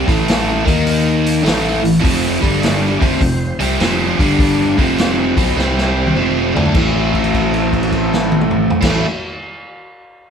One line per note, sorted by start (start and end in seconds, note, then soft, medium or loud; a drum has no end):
0.07 0.63 A1 loud
0.07 0.64 A2 medium
0.07 0.65 E3 medium
0.07 0.66 A3 medium
0.07 kick loud
0.07 open hi-hat soft
0.28 snare loud
0.28 open hi-hat medium
0.65 1.41 D#2 medium
0.65 1.43 D#3 medium
0.65 1.43 A#3 medium
0.65 1.44 D#4 loud
0.65 kick loud
0.65 open hi-hat medium
0.87 open hi-hat medium
1.26 open hi-hat medium
1.43 1.81 A1 medium
1.43 1.80 A2 medium
1.43 1.81 E3 medium
1.43 1.82 A3 medium
1.43 open hi-hat medium
1.47 snare loud
1.82 2.02 A1 medium
1.82 1.98 A2 medium
1.82 1.99 E3 medium
1.82 open hi-hat medium
2.01 2.40 F1 loud
2.01 2.40 F2 medium
2.01 2.40 C3 loud
2.01 2.41 F3 loud
2.01 kick loud
2.01 open hi-hat medium
2.41 2.97 G1 medium
2.41 2.99 G2 medium
2.41 2.99 D3 medium
2.41 3.00 G3 medium
2.41 3.00 D4 medium
2.41 3.00 D5 medium
2.41 kick medium
2.41 open hi-hat medium
2.63 snare loud
2.63 open hi-hat medium
3.00 3.20 F1 loud
3.00 3.20 F2 loud
3.00 3.20 C3 loud
3.00 4.17 F3 medium
3.00 3.20 F3 loud
3.00 4.18 C4 medium
3.00 4.17 C5 medium
3.00 kick loud
3.00 open hi-hat medium
3.21 3.57 F1 medium
3.21 3.52 F2 medium
3.21 3.52 C3 medium
3.21 kick medium
3.21 open hi-hat medium
3.59 3.78 C2 loud
3.59 3.79 C3 medium
3.59 3.79 G3 medium
3.59 3.79 C4 medium
3.59 open hi-hat medium
3.78 4.16 F1 medium
3.78 4.17 F2 medium
3.78 4.18 C3 medium
3.78 4.18 F3 medium
3.78 snare loud
3.78 open hi-hat medium
4.17 4.74 G1 medium
4.17 4.76 G2 medium
4.17 4.77 D3 loud
4.17 4.76 G3 medium
4.17 4.77 G3 medium
4.17 4.76 D4 medium
4.17 4.77 D5 medium
4.17 kick loud
4.17 open hi-hat medium
4.39 kick loud
4.39 open hi-hat medium
4.76 5.33 F1 medium
4.76 5.35 F2 medium
4.76 5.36 C3 medium
4.76 5.55 F3 medium
4.76 5.36 F3 medium
4.76 5.54 C4 medium
4.76 5.54 C5 medium
4.76 kick medium
4.76 open hi-hat soft
4.98 snare loud
4.98 open hi-hat medium
5.37 5.55 B1 medium
5.37 5.56 B2 medium
5.37 5.56 F#3 medium
5.37 5.56 B3 loud
5.37 kick loud
5.37 open hi-hat medium
5.55 6.11 C2 loud
5.55 6.15 C3 medium
5.55 6.14 G3 medium
5.55 6.15 G3 medium
5.55 6.13 C4 medium
5.55 6.15 C4 loud
5.55 6.13 C5 medium
5.55 snare medium
5.78 snare medium
6.07 high tom medium
6.14 6.52 F1 medium
6.14 6.53 F2 medium
6.14 6.54 C3 medium
6.14 6.73 F3 medium
6.14 6.54 F3 medium
6.14 6.72 C4 medium
6.14 6.73 C5 medium
6.14 mid tom medium
6.55 6.73 D2 medium
6.55 6.73 D3 medium
6.55 6.74 A3 medium
6.55 6.74 D4 loud
6.55 floor tom loud
6.66 floor tom medium
6.72 8.69 A1 medium
6.72 8.81 A2 medium
6.72 8.70 E3 medium
6.72 8.83 E3 medium
6.72 8.70 C4 medium
6.72 8.70 A4 medium
6.72 kick loud
6.72 crash medium
6.78 8.85 A3 medium
7.14 kick medium
7.14 crash soft
7.24 crash soft
7.34 kick medium
7.34 crash medium
7.54 crash soft
7.73 kick medium
7.73 crash soft
7.83 crash soft
7.92 kick medium
7.92 crash soft
8.13 snare medium
8.32 high tom medium
8.41 mid tom medium
8.51 mid tom medium
8.70 floor tom medium
8.81 9.02 A1 medium
8.81 9.03 A2 loud
8.81 9.04 E3 medium
8.81 9.05 E3 medium
8.81 9.04 C4 medium
8.81 9.03 A4 medium
8.81 kick medium
8.81 snare medium
8.81 crash loud
8.85 9.05 A3 loud